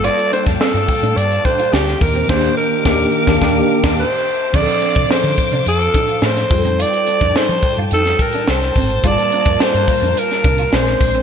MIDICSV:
0, 0, Header, 1, 9, 480
1, 0, Start_track
1, 0, Tempo, 562324
1, 34, Time_signature, 4, 2, 24, 8
1, 9581, End_track
2, 0, Start_track
2, 0, Title_t, "String section"
2, 0, Program_c, 0, 48
2, 0, Note_on_c, 0, 77, 66
2, 0, Note_on_c, 0, 79, 72
2, 0, Note_on_c, 0, 81, 69
2, 1693, Note_off_c, 0, 79, 0
2, 1694, Note_off_c, 0, 77, 0
2, 1694, Note_off_c, 0, 81, 0
2, 1721, Note_on_c, 0, 75, 66
2, 1721, Note_on_c, 0, 86, 76
2, 1723, Note_on_c, 0, 67, 68
2, 3382, Note_off_c, 0, 75, 0
2, 3383, Note_off_c, 0, 67, 0
2, 3401, Note_on_c, 0, 70, 64
2, 3401, Note_on_c, 0, 81, 59
2, 3407, Note_on_c, 0, 76, 64
2, 3857, Note_off_c, 0, 86, 0
2, 3874, Note_off_c, 0, 70, 0
2, 3874, Note_off_c, 0, 81, 0
2, 3877, Note_off_c, 0, 76, 0
2, 3891, Note_on_c, 0, 86, 82
2, 3894, Note_on_c, 0, 72, 67
2, 3895, Note_on_c, 0, 77, 62
2, 5547, Note_off_c, 0, 86, 0
2, 5549, Note_off_c, 0, 72, 0
2, 5549, Note_off_c, 0, 77, 0
2, 5569, Note_on_c, 0, 79, 66
2, 5570, Note_on_c, 0, 81, 68
2, 7701, Note_off_c, 0, 79, 0
2, 7708, Note_on_c, 0, 77, 67
2, 7711, Note_on_c, 0, 70, 88
2, 9128, Note_off_c, 0, 81, 0
2, 9137, Note_off_c, 0, 77, 0
2, 9138, Note_off_c, 0, 70, 0
2, 9156, Note_on_c, 0, 68, 68
2, 9159, Note_on_c, 0, 84, 79
2, 9160, Note_on_c, 0, 74, 65
2, 9581, Note_off_c, 0, 68, 0
2, 9581, Note_off_c, 0, 74, 0
2, 9581, Note_off_c, 0, 84, 0
2, 9581, End_track
3, 0, Start_track
3, 0, Title_t, "Alto saxophone"
3, 0, Program_c, 1, 65
3, 37, Note_on_c, 1, 74, 109
3, 276, Note_off_c, 1, 74, 0
3, 280, Note_on_c, 1, 72, 99
3, 387, Note_off_c, 1, 72, 0
3, 521, Note_on_c, 1, 69, 95
3, 998, Note_on_c, 1, 74, 99
3, 1011, Note_off_c, 1, 69, 0
3, 1236, Note_on_c, 1, 72, 103
3, 1249, Note_off_c, 1, 74, 0
3, 1478, Note_on_c, 1, 67, 86
3, 1491, Note_off_c, 1, 72, 0
3, 1720, Note_on_c, 1, 70, 83
3, 1733, Note_off_c, 1, 67, 0
3, 1955, Note_off_c, 1, 70, 0
3, 1960, Note_on_c, 1, 72, 94
3, 2181, Note_off_c, 1, 72, 0
3, 2196, Note_on_c, 1, 70, 91
3, 3362, Note_off_c, 1, 70, 0
3, 3410, Note_on_c, 1, 72, 85
3, 3888, Note_on_c, 1, 74, 100
3, 3901, Note_off_c, 1, 72, 0
3, 4362, Note_off_c, 1, 74, 0
3, 4369, Note_on_c, 1, 72, 93
3, 4809, Note_off_c, 1, 72, 0
3, 4851, Note_on_c, 1, 69, 103
3, 5336, Note_on_c, 1, 72, 96
3, 5349, Note_off_c, 1, 69, 0
3, 5816, Note_on_c, 1, 74, 100
3, 5829, Note_off_c, 1, 72, 0
3, 6288, Note_on_c, 1, 72, 103
3, 6301, Note_off_c, 1, 74, 0
3, 6631, Note_off_c, 1, 72, 0
3, 6773, Note_on_c, 1, 69, 98
3, 7012, Note_on_c, 1, 70, 89
3, 7025, Note_off_c, 1, 69, 0
3, 7244, Note_off_c, 1, 70, 0
3, 7255, Note_on_c, 1, 72, 92
3, 7738, Note_on_c, 1, 74, 112
3, 7751, Note_off_c, 1, 72, 0
3, 8207, Note_off_c, 1, 74, 0
3, 8215, Note_on_c, 1, 72, 103
3, 8696, Note_on_c, 1, 70, 92
3, 8709, Note_off_c, 1, 72, 0
3, 9173, Note_on_c, 1, 72, 84
3, 9186, Note_off_c, 1, 70, 0
3, 9581, Note_off_c, 1, 72, 0
3, 9581, End_track
4, 0, Start_track
4, 0, Title_t, "Clean electric guitar"
4, 0, Program_c, 2, 27
4, 32, Note_on_c, 2, 65, 87
4, 124, Note_off_c, 2, 65, 0
4, 274, Note_on_c, 2, 62, 67
4, 365, Note_off_c, 2, 62, 0
4, 511, Note_on_c, 2, 60, 83
4, 603, Note_off_c, 2, 60, 0
4, 877, Note_on_c, 2, 62, 63
4, 967, Note_off_c, 2, 62, 0
4, 1236, Note_on_c, 2, 62, 69
4, 1327, Note_off_c, 2, 62, 0
4, 1357, Note_on_c, 2, 65, 70
4, 1447, Note_off_c, 2, 65, 0
4, 1480, Note_on_c, 2, 62, 69
4, 1569, Note_off_c, 2, 62, 0
4, 1834, Note_on_c, 2, 60, 64
4, 1925, Note_off_c, 2, 60, 0
4, 3873, Note_on_c, 2, 62, 86
4, 3965, Note_off_c, 2, 62, 0
4, 4113, Note_on_c, 2, 60, 69
4, 4205, Note_off_c, 2, 60, 0
4, 4353, Note_on_c, 2, 60, 77
4, 4445, Note_off_c, 2, 60, 0
4, 4716, Note_on_c, 2, 62, 70
4, 4807, Note_off_c, 2, 62, 0
4, 5077, Note_on_c, 2, 62, 69
4, 5168, Note_off_c, 2, 62, 0
4, 5197, Note_on_c, 2, 65, 67
4, 5287, Note_off_c, 2, 65, 0
4, 5320, Note_on_c, 2, 62, 77
4, 5409, Note_off_c, 2, 62, 0
4, 5672, Note_on_c, 2, 60, 68
4, 5764, Note_off_c, 2, 60, 0
4, 5797, Note_on_c, 2, 65, 81
4, 5887, Note_off_c, 2, 65, 0
4, 6158, Note_on_c, 2, 62, 77
4, 6248, Note_off_c, 2, 62, 0
4, 6280, Note_on_c, 2, 63, 82
4, 6369, Note_off_c, 2, 63, 0
4, 6644, Note_on_c, 2, 65, 76
4, 6732, Note_off_c, 2, 65, 0
4, 6764, Note_on_c, 2, 63, 69
4, 6852, Note_off_c, 2, 63, 0
4, 7124, Note_on_c, 2, 62, 72
4, 7212, Note_off_c, 2, 62, 0
4, 7487, Note_on_c, 2, 60, 65
4, 7573, Note_off_c, 2, 60, 0
4, 7722, Note_on_c, 2, 65, 82
4, 7810, Note_off_c, 2, 65, 0
4, 7963, Note_on_c, 2, 62, 70
4, 8051, Note_off_c, 2, 62, 0
4, 8201, Note_on_c, 2, 60, 86
4, 8290, Note_off_c, 2, 60, 0
4, 8561, Note_on_c, 2, 62, 75
4, 8650, Note_off_c, 2, 62, 0
4, 8916, Note_on_c, 2, 62, 70
4, 9006, Note_off_c, 2, 62, 0
4, 9039, Note_on_c, 2, 65, 76
4, 9128, Note_off_c, 2, 65, 0
4, 9158, Note_on_c, 2, 62, 78
4, 9247, Note_off_c, 2, 62, 0
4, 9514, Note_on_c, 2, 60, 73
4, 9581, Note_off_c, 2, 60, 0
4, 9581, End_track
5, 0, Start_track
5, 0, Title_t, "Tine electric piano"
5, 0, Program_c, 3, 4
5, 0, Control_c, 3, 64, 127
5, 0, Note_on_c, 3, 55, 67
5, 0, Note_on_c, 3, 58, 62
5, 0, Note_on_c, 3, 65, 63
5, 0, Note_on_c, 3, 69, 72
5, 1677, Note_off_c, 3, 55, 0
5, 1680, Note_off_c, 3, 58, 0
5, 1683, Note_off_c, 3, 65, 0
5, 1688, Note_off_c, 3, 69, 0
5, 1704, Note_on_c, 3, 51, 67
5, 1712, Note_on_c, 3, 58, 61
5, 1720, Note_on_c, 3, 62, 61
5, 1726, Control_c, 3, 64, 0
5, 1727, Note_on_c, 3, 67, 76
5, 1883, Control_c, 3, 64, 127
5, 1932, Note_off_c, 3, 51, 0
5, 1938, Note_off_c, 3, 58, 0
5, 1942, Note_on_c, 3, 51, 95
5, 1947, Note_off_c, 3, 62, 0
5, 1949, Note_on_c, 3, 58, 111
5, 1952, Note_off_c, 3, 67, 0
5, 1957, Note_on_c, 3, 62, 105
5, 1962, Note_on_c, 3, 67, 105
5, 2111, Note_off_c, 3, 51, 0
5, 2115, Note_off_c, 3, 58, 0
5, 2120, Note_off_c, 3, 62, 0
5, 2122, Note_off_c, 3, 67, 0
5, 2420, Note_on_c, 3, 51, 106
5, 2428, Note_on_c, 3, 58, 96
5, 2434, Note_on_c, 3, 62, 92
5, 2439, Note_on_c, 3, 67, 99
5, 2590, Note_off_c, 3, 51, 0
5, 2595, Note_off_c, 3, 58, 0
5, 2598, Note_off_c, 3, 62, 0
5, 2600, Note_off_c, 3, 67, 0
5, 2781, Note_on_c, 3, 51, 89
5, 2787, Note_on_c, 3, 58, 101
5, 2794, Note_on_c, 3, 62, 92
5, 2800, Note_on_c, 3, 67, 92
5, 2889, Note_off_c, 3, 51, 0
5, 2893, Note_off_c, 3, 58, 0
5, 2897, Note_off_c, 3, 62, 0
5, 2900, Note_off_c, 3, 67, 0
5, 2906, Note_on_c, 3, 51, 106
5, 2911, Note_on_c, 3, 58, 106
5, 2917, Note_on_c, 3, 62, 104
5, 2925, Note_on_c, 3, 67, 99
5, 3073, Note_off_c, 3, 51, 0
5, 3077, Note_off_c, 3, 58, 0
5, 3080, Note_off_c, 3, 62, 0
5, 3084, Note_off_c, 3, 67, 0
5, 3266, Note_on_c, 3, 51, 83
5, 3273, Note_on_c, 3, 58, 86
5, 3281, Note_on_c, 3, 62, 88
5, 3287, Note_on_c, 3, 67, 83
5, 3406, Control_c, 3, 64, 0
5, 3434, Note_off_c, 3, 51, 0
5, 3438, Note_off_c, 3, 58, 0
5, 3442, Note_off_c, 3, 62, 0
5, 3446, Note_off_c, 3, 67, 0
5, 3547, Control_c, 3, 64, 127
5, 3861, Note_on_c, 3, 53, 67
5, 3870, Note_on_c, 3, 60, 64
5, 3876, Note_on_c, 3, 62, 66
5, 3883, Note_on_c, 3, 68, 57
5, 3886, Control_c, 3, 64, 0
5, 3935, Note_off_c, 3, 68, 0
5, 3939, Note_on_c, 3, 69, 75
5, 4019, Control_c, 3, 64, 127
5, 5515, Note_off_c, 3, 53, 0
5, 5520, Note_off_c, 3, 60, 0
5, 5522, Note_off_c, 3, 62, 0
5, 5541, Note_on_c, 3, 55, 66
5, 5548, Note_on_c, 3, 63, 60
5, 5554, Note_on_c, 3, 65, 59
5, 5555, Note_off_c, 3, 69, 0
5, 5562, Note_on_c, 3, 68, 58
5, 5568, Control_c, 3, 64, 0
5, 5615, Note_off_c, 3, 68, 0
5, 5618, Note_on_c, 3, 69, 72
5, 5727, Control_c, 3, 64, 127
5, 7434, Note_off_c, 3, 55, 0
5, 7438, Note_off_c, 3, 63, 0
5, 7441, Note_off_c, 3, 65, 0
5, 7473, Note_off_c, 3, 69, 0
5, 7704, Note_on_c, 3, 55, 69
5, 7709, Note_on_c, 3, 58, 64
5, 7719, Note_on_c, 3, 65, 66
5, 7725, Note_on_c, 3, 68, 66
5, 7727, Control_c, 3, 64, 0
5, 7776, Note_off_c, 3, 68, 0
5, 7778, Note_on_c, 3, 81, 82
5, 7854, Control_c, 3, 64, 127
5, 9120, Note_off_c, 3, 55, 0
5, 9123, Note_off_c, 3, 58, 0
5, 9128, Note_off_c, 3, 65, 0
5, 9148, Note_on_c, 3, 56, 53
5, 9151, Note_on_c, 3, 60, 60
5, 9153, Note_on_c, 3, 62, 55
5, 9157, Note_on_c, 3, 70, 72
5, 9158, Note_off_c, 3, 81, 0
5, 9167, Control_c, 3, 64, 0
5, 9321, Control_c, 3, 64, 127
5, 9581, Note_off_c, 3, 56, 0
5, 9581, Note_off_c, 3, 60, 0
5, 9581, Note_off_c, 3, 62, 0
5, 9581, Note_off_c, 3, 70, 0
5, 9581, End_track
6, 0, Start_track
6, 0, Title_t, "Fretless electric bass"
6, 0, Program_c, 4, 35
6, 398, Note_on_c, 4, 41, 78
6, 487, Note_off_c, 4, 41, 0
6, 629, Note_on_c, 4, 43, 82
6, 721, Note_off_c, 4, 43, 0
6, 872, Note_on_c, 4, 45, 70
6, 963, Note_off_c, 4, 45, 0
6, 993, Note_on_c, 4, 43, 95
6, 1174, Note_off_c, 4, 43, 0
6, 1474, Note_on_c, 4, 38, 82
6, 1654, Note_off_c, 4, 38, 0
6, 1720, Note_on_c, 4, 39, 83
6, 1898, Note_off_c, 4, 39, 0
6, 1958, Note_on_c, 4, 39, 94
6, 2120, Note_off_c, 4, 39, 0
6, 2436, Note_on_c, 4, 39, 81
6, 2599, Note_off_c, 4, 39, 0
6, 2795, Note_on_c, 4, 39, 85
6, 2898, Note_off_c, 4, 39, 0
6, 2914, Note_on_c, 4, 39, 85
6, 3078, Note_off_c, 4, 39, 0
6, 3277, Note_on_c, 4, 39, 90
6, 3439, Note_off_c, 4, 39, 0
6, 3874, Note_on_c, 4, 38, 109
6, 3965, Note_off_c, 4, 38, 0
6, 4235, Note_on_c, 4, 48, 66
6, 4325, Note_off_c, 4, 48, 0
6, 4467, Note_on_c, 4, 50, 94
6, 4560, Note_off_c, 4, 50, 0
6, 4707, Note_on_c, 4, 48, 72
6, 4800, Note_off_c, 4, 48, 0
6, 4830, Note_on_c, 4, 41, 83
6, 5012, Note_off_c, 4, 41, 0
6, 5308, Note_on_c, 4, 45, 91
6, 5491, Note_off_c, 4, 45, 0
6, 5555, Note_on_c, 4, 41, 80
6, 5826, Note_off_c, 4, 41, 0
6, 6155, Note_on_c, 4, 41, 81
6, 6245, Note_off_c, 4, 41, 0
6, 6392, Note_on_c, 4, 53, 87
6, 6483, Note_off_c, 4, 53, 0
6, 6636, Note_on_c, 4, 43, 65
6, 6726, Note_off_c, 4, 43, 0
6, 6757, Note_on_c, 4, 41, 93
6, 6936, Note_off_c, 4, 41, 0
6, 7238, Note_on_c, 4, 36, 77
6, 7417, Note_off_c, 4, 36, 0
6, 7474, Note_on_c, 4, 32, 80
6, 7654, Note_off_c, 4, 32, 0
6, 7713, Note_on_c, 4, 31, 101
6, 7804, Note_off_c, 4, 31, 0
6, 8075, Note_on_c, 4, 41, 76
6, 8165, Note_off_c, 4, 41, 0
6, 8314, Note_on_c, 4, 43, 87
6, 8405, Note_off_c, 4, 43, 0
6, 8551, Note_on_c, 4, 41, 90
6, 8642, Note_off_c, 4, 41, 0
6, 8915, Note_on_c, 4, 36, 81
6, 9095, Note_off_c, 4, 36, 0
6, 9155, Note_on_c, 4, 34, 97
6, 9335, Note_off_c, 4, 34, 0
6, 9395, Note_on_c, 4, 34, 76
6, 9581, Note_off_c, 4, 34, 0
6, 9581, End_track
7, 0, Start_track
7, 0, Title_t, "Muted clean electric guitar strokes"
7, 156, Note_on_c, 9, 29, 48
7, 241, Note_off_c, 9, 29, 0
7, 753, Note_on_c, 9, 29, 44
7, 839, Note_off_c, 9, 29, 0
7, 998, Note_on_c, 9, 29, 42
7, 1084, Note_off_c, 9, 29, 0
7, 1718, Note_on_c, 9, 29, 40
7, 1803, Note_off_c, 9, 29, 0
7, 3995, Note_on_c, 9, 29, 48
7, 4080, Note_off_c, 9, 29, 0
7, 4596, Note_on_c, 9, 29, 47
7, 4681, Note_off_c, 9, 29, 0
7, 4839, Note_on_c, 9, 29, 47
7, 4924, Note_off_c, 9, 29, 0
7, 5557, Note_on_c, 9, 29, 38
7, 5642, Note_off_c, 9, 29, 0
7, 6039, Note_on_c, 9, 29, 46
7, 6124, Note_off_c, 9, 29, 0
7, 6406, Note_on_c, 9, 29, 43
7, 6491, Note_off_c, 9, 29, 0
7, 6882, Note_on_c, 9, 29, 46
7, 6968, Note_off_c, 9, 29, 0
7, 7846, Note_on_c, 9, 29, 49
7, 7932, Note_off_c, 9, 29, 0
7, 8441, Note_on_c, 9, 29, 48
7, 8527, Note_off_c, 9, 29, 0
7, 8681, Note_on_c, 9, 29, 42
7, 8766, Note_off_c, 9, 29, 0
7, 9393, Note_on_c, 9, 29, 39
7, 9478, Note_off_c, 9, 29, 0
7, 9581, End_track
8, 0, Start_track
8, 0, Title_t, "Muted fretless electric bass strokes"
8, 510, Note_on_c, 9, 29, 36
8, 596, Note_off_c, 9, 29, 0
8, 4352, Note_on_c, 9, 29, 37
8, 4437, Note_off_c, 9, 29, 0
8, 6273, Note_on_c, 9, 29, 40
8, 6358, Note_off_c, 9, 29, 0
8, 8196, Note_on_c, 9, 29, 43
8, 8281, Note_off_c, 9, 29, 0
8, 9581, End_track
9, 0, Start_track
9, 0, Title_t, "Drums"
9, 35, Note_on_c, 9, 42, 98
9, 121, Note_off_c, 9, 42, 0
9, 160, Note_on_c, 9, 42, 47
9, 245, Note_off_c, 9, 42, 0
9, 281, Note_on_c, 9, 42, 68
9, 366, Note_off_c, 9, 42, 0
9, 397, Note_on_c, 9, 36, 92
9, 398, Note_on_c, 9, 42, 58
9, 405, Note_on_c, 9, 38, 39
9, 483, Note_off_c, 9, 36, 0
9, 483, Note_off_c, 9, 42, 0
9, 490, Note_off_c, 9, 38, 0
9, 519, Note_on_c, 9, 38, 108
9, 605, Note_off_c, 9, 38, 0
9, 645, Note_on_c, 9, 42, 51
9, 730, Note_off_c, 9, 42, 0
9, 755, Note_on_c, 9, 36, 83
9, 757, Note_on_c, 9, 46, 65
9, 841, Note_off_c, 9, 36, 0
9, 843, Note_off_c, 9, 46, 0
9, 884, Note_on_c, 9, 42, 37
9, 969, Note_off_c, 9, 42, 0
9, 1003, Note_on_c, 9, 42, 76
9, 1088, Note_off_c, 9, 42, 0
9, 1121, Note_on_c, 9, 42, 41
9, 1206, Note_off_c, 9, 42, 0
9, 1238, Note_on_c, 9, 36, 79
9, 1241, Note_on_c, 9, 42, 70
9, 1324, Note_off_c, 9, 36, 0
9, 1327, Note_off_c, 9, 42, 0
9, 1359, Note_on_c, 9, 42, 55
9, 1444, Note_off_c, 9, 42, 0
9, 1481, Note_on_c, 9, 38, 94
9, 1566, Note_off_c, 9, 38, 0
9, 1603, Note_on_c, 9, 42, 41
9, 1607, Note_on_c, 9, 38, 26
9, 1688, Note_off_c, 9, 42, 0
9, 1692, Note_off_c, 9, 38, 0
9, 1719, Note_on_c, 9, 36, 105
9, 1724, Note_on_c, 9, 46, 73
9, 1804, Note_off_c, 9, 36, 0
9, 1809, Note_off_c, 9, 46, 0
9, 1840, Note_on_c, 9, 42, 39
9, 1925, Note_off_c, 9, 42, 0
9, 1958, Note_on_c, 9, 36, 114
9, 1959, Note_on_c, 9, 49, 81
9, 1962, Note_on_c, 9, 38, 109
9, 2043, Note_off_c, 9, 36, 0
9, 2045, Note_off_c, 9, 49, 0
9, 2047, Note_off_c, 9, 38, 0
9, 2436, Note_on_c, 9, 36, 96
9, 2440, Note_on_c, 9, 38, 106
9, 2522, Note_off_c, 9, 36, 0
9, 2525, Note_off_c, 9, 38, 0
9, 2794, Note_on_c, 9, 36, 97
9, 2795, Note_on_c, 9, 38, 87
9, 2880, Note_off_c, 9, 36, 0
9, 2880, Note_off_c, 9, 38, 0
9, 2916, Note_on_c, 9, 36, 91
9, 2920, Note_on_c, 9, 38, 87
9, 3001, Note_off_c, 9, 36, 0
9, 3005, Note_off_c, 9, 38, 0
9, 3275, Note_on_c, 9, 36, 113
9, 3275, Note_on_c, 9, 49, 84
9, 3277, Note_on_c, 9, 38, 115
9, 3360, Note_off_c, 9, 49, 0
9, 3361, Note_off_c, 9, 36, 0
9, 3363, Note_off_c, 9, 38, 0
9, 3874, Note_on_c, 9, 36, 110
9, 3874, Note_on_c, 9, 49, 96
9, 3960, Note_off_c, 9, 36, 0
9, 3960, Note_off_c, 9, 49, 0
9, 3993, Note_on_c, 9, 42, 51
9, 4078, Note_off_c, 9, 42, 0
9, 4112, Note_on_c, 9, 42, 63
9, 4197, Note_off_c, 9, 42, 0
9, 4227, Note_on_c, 9, 42, 60
9, 4235, Note_on_c, 9, 36, 96
9, 4312, Note_off_c, 9, 42, 0
9, 4320, Note_off_c, 9, 36, 0
9, 4358, Note_on_c, 9, 38, 116
9, 4444, Note_off_c, 9, 38, 0
9, 4477, Note_on_c, 9, 42, 47
9, 4563, Note_off_c, 9, 42, 0
9, 4590, Note_on_c, 9, 46, 70
9, 4592, Note_on_c, 9, 36, 85
9, 4676, Note_off_c, 9, 46, 0
9, 4677, Note_off_c, 9, 36, 0
9, 4717, Note_on_c, 9, 42, 39
9, 4802, Note_off_c, 9, 42, 0
9, 4834, Note_on_c, 9, 42, 83
9, 4920, Note_off_c, 9, 42, 0
9, 4957, Note_on_c, 9, 42, 50
9, 5043, Note_off_c, 9, 42, 0
9, 5074, Note_on_c, 9, 36, 92
9, 5077, Note_on_c, 9, 42, 70
9, 5160, Note_off_c, 9, 36, 0
9, 5162, Note_off_c, 9, 42, 0
9, 5185, Note_on_c, 9, 42, 55
9, 5270, Note_off_c, 9, 42, 0
9, 5311, Note_on_c, 9, 38, 89
9, 5396, Note_off_c, 9, 38, 0
9, 5432, Note_on_c, 9, 42, 48
9, 5436, Note_on_c, 9, 38, 27
9, 5517, Note_off_c, 9, 42, 0
9, 5521, Note_off_c, 9, 38, 0
9, 5555, Note_on_c, 9, 36, 119
9, 5557, Note_on_c, 9, 46, 74
9, 5640, Note_off_c, 9, 36, 0
9, 5642, Note_off_c, 9, 46, 0
9, 5679, Note_on_c, 9, 42, 46
9, 5765, Note_off_c, 9, 42, 0
9, 5802, Note_on_c, 9, 42, 99
9, 5887, Note_off_c, 9, 42, 0
9, 5917, Note_on_c, 9, 42, 50
9, 6003, Note_off_c, 9, 42, 0
9, 6034, Note_on_c, 9, 42, 67
9, 6119, Note_off_c, 9, 42, 0
9, 6152, Note_on_c, 9, 42, 61
9, 6156, Note_on_c, 9, 36, 92
9, 6237, Note_off_c, 9, 42, 0
9, 6241, Note_off_c, 9, 36, 0
9, 6280, Note_on_c, 9, 38, 101
9, 6366, Note_off_c, 9, 38, 0
9, 6397, Note_on_c, 9, 42, 55
9, 6482, Note_off_c, 9, 42, 0
9, 6507, Note_on_c, 9, 46, 66
9, 6511, Note_on_c, 9, 36, 91
9, 6592, Note_off_c, 9, 46, 0
9, 6596, Note_off_c, 9, 36, 0
9, 6634, Note_on_c, 9, 42, 38
9, 6719, Note_off_c, 9, 42, 0
9, 6752, Note_on_c, 9, 42, 72
9, 6837, Note_off_c, 9, 42, 0
9, 6873, Note_on_c, 9, 42, 48
9, 6878, Note_on_c, 9, 38, 29
9, 6959, Note_off_c, 9, 42, 0
9, 6963, Note_off_c, 9, 38, 0
9, 6993, Note_on_c, 9, 36, 93
9, 6994, Note_on_c, 9, 42, 75
9, 7078, Note_off_c, 9, 36, 0
9, 7080, Note_off_c, 9, 42, 0
9, 7108, Note_on_c, 9, 42, 63
9, 7193, Note_off_c, 9, 42, 0
9, 7235, Note_on_c, 9, 38, 97
9, 7320, Note_off_c, 9, 38, 0
9, 7353, Note_on_c, 9, 42, 47
9, 7357, Note_on_c, 9, 38, 25
9, 7438, Note_off_c, 9, 42, 0
9, 7442, Note_off_c, 9, 38, 0
9, 7475, Note_on_c, 9, 36, 89
9, 7476, Note_on_c, 9, 46, 79
9, 7561, Note_off_c, 9, 36, 0
9, 7561, Note_off_c, 9, 46, 0
9, 7596, Note_on_c, 9, 42, 45
9, 7681, Note_off_c, 9, 42, 0
9, 7713, Note_on_c, 9, 42, 98
9, 7714, Note_on_c, 9, 36, 103
9, 7799, Note_off_c, 9, 36, 0
9, 7799, Note_off_c, 9, 42, 0
9, 7835, Note_on_c, 9, 42, 55
9, 7920, Note_off_c, 9, 42, 0
9, 7956, Note_on_c, 9, 42, 63
9, 8042, Note_off_c, 9, 42, 0
9, 8070, Note_on_c, 9, 42, 59
9, 8075, Note_on_c, 9, 36, 100
9, 8155, Note_off_c, 9, 42, 0
9, 8160, Note_off_c, 9, 36, 0
9, 8198, Note_on_c, 9, 38, 114
9, 8283, Note_off_c, 9, 38, 0
9, 8318, Note_on_c, 9, 42, 48
9, 8403, Note_off_c, 9, 42, 0
9, 8433, Note_on_c, 9, 36, 95
9, 8434, Note_on_c, 9, 46, 73
9, 8519, Note_off_c, 9, 36, 0
9, 8519, Note_off_c, 9, 46, 0
9, 8564, Note_on_c, 9, 42, 38
9, 8649, Note_off_c, 9, 42, 0
9, 8682, Note_on_c, 9, 42, 81
9, 8767, Note_off_c, 9, 42, 0
9, 8800, Note_on_c, 9, 42, 49
9, 8805, Note_on_c, 9, 38, 35
9, 8885, Note_off_c, 9, 42, 0
9, 8890, Note_off_c, 9, 38, 0
9, 8915, Note_on_c, 9, 36, 100
9, 8915, Note_on_c, 9, 42, 76
9, 9000, Note_off_c, 9, 36, 0
9, 9001, Note_off_c, 9, 42, 0
9, 9031, Note_on_c, 9, 42, 60
9, 9116, Note_off_c, 9, 42, 0
9, 9156, Note_on_c, 9, 38, 88
9, 9241, Note_off_c, 9, 38, 0
9, 9274, Note_on_c, 9, 42, 44
9, 9278, Note_on_c, 9, 38, 29
9, 9360, Note_off_c, 9, 42, 0
9, 9364, Note_off_c, 9, 38, 0
9, 9395, Note_on_c, 9, 36, 97
9, 9397, Note_on_c, 9, 46, 83
9, 9481, Note_off_c, 9, 36, 0
9, 9483, Note_off_c, 9, 46, 0
9, 9514, Note_on_c, 9, 42, 43
9, 9581, Note_off_c, 9, 42, 0
9, 9581, End_track
0, 0, End_of_file